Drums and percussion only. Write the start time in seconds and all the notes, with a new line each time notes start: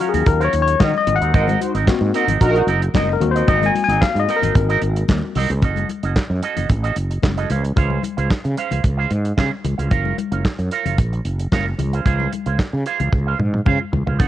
0.00 closed hi-hat
0.14 closed hi-hat, low conga
0.26 kick, closed hi-hat
0.41 closed hi-hat
0.53 closed hi-hat
0.68 closed hi-hat
0.80 kick, snare, clap, muted conga, high conga
1.07 closed hi-hat, muted conga, high conga, low conga
1.22 closed hi-hat
1.34 kick, closed hi-hat, muted conga, low conga
1.48 closed hi-hat, high conga
1.61 closed hi-hat, high conga
1.75 closed hi-hat
1.87 kick, snare, clap
2.14 closed hi-hat
2.28 closed hi-hat, low conga
2.41 kick, closed hi-hat, muted conga
2.56 closed hi-hat
2.68 closed hi-hat, muted conga
2.82 closed hi-hat
2.94 kick, snare, clap, muted conga, high conga
3.21 closed hi-hat, muted conga, high conga, low conga
3.36 closed hi-hat
3.48 kick, closed hi-hat, muted conga, low conga
3.62 closed hi-hat, high conga
3.75 closed hi-hat, muted conga, high conga
3.89 closed hi-hat
4.02 kick, snare, clap, muted conga
4.16 closed hi-hat
4.28 closed hi-hat, muted conga
4.42 closed hi-hat, low conga
4.54 kick, closed hi-hat, muted conga
4.69 closed hi-hat
4.81 closed hi-hat, muted conga
4.96 closed hi-hat
5.08 kick, snare, clap, high conga
5.35 open hi-hat, muted conga, high conga, low conga
5.50 closed hi-hat
5.62 kick, closed hi-hat, muted conga, low conga
5.76 closed hi-hat, high conga
5.89 closed hi-hat, high conga
6.03 closed hi-hat
6.16 kick, snare, clap
6.42 closed hi-hat, muted conga
6.57 closed hi-hat, low conga
6.69 kick, closed hi-hat, muted conga
6.84 closed hi-hat
6.96 closed hi-hat, muted conga
7.11 closed hi-hat
7.22 kick, snare, clap, high conga
7.37 closed hi-hat
7.50 closed hi-hat, muted conga, high conga, low conga
7.64 closed hi-hat
7.76 kick, closed hi-hat, low conga
7.90 high conga
8.03 closed hi-hat, muted conga, high conga
8.18 closed hi-hat
8.30 kick, snare, clap, muted conga
8.45 closed hi-hat
8.57 closed hi-hat, muted conga
8.71 closed hi-hat, low conga
8.84 kick, closed hi-hat
9.11 closed hi-hat, muted conga
9.25 closed hi-hat
9.38 kick, snare, clap, high conga
9.65 closed hi-hat, muted conga, high conga, low conga
9.79 closed hi-hat
9.91 kick, closed hi-hat, muted conga, low conga
10.05 high conga
10.18 closed hi-hat, muted conga, high conga
10.32 closed hi-hat
10.45 kick, snare, clap
10.59 closed hi-hat
10.71 closed hi-hat
10.86 closed hi-hat, low conga
10.98 kick, closed hi-hat
11.13 closed hi-hat
11.25 closed hi-hat
11.39 closed hi-hat
11.52 kick, snare, clap, high conga
11.79 closed hi-hat, muted conga, high conga, low conga
11.93 closed hi-hat
12.05 kick, closed hi-hat, low conga
12.20 high conga
12.32 closed hi-hat, high conga
12.46 closed hi-hat
12.59 kick, snare, clap, muted conga
12.86 closed hi-hat
13.00 closed hi-hat, low conga
13.13 kick, high tom
13.39 mid tom, muted conga
13.54 mid tom
13.66 kick, mid tom, muted conga, high conga
13.93 floor tom, muted conga, high conga, low conga
14.07 floor tom
14.20 kick, closed hi-hat, muted conga, low conga